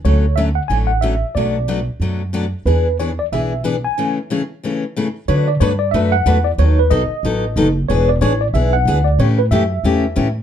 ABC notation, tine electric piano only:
X:1
M:4/4
L:1/8
Q:"Swing" 1/4=184
K:A
V:1 name="Tine electric piano"
c2 e f g f e2 | d3 z4 z | B2 c d e2 z g- | g z6 z |
[K:D] c d c d e f2 d | c B ^d4- d z | c d c d e f2 d | c B e4- e z |]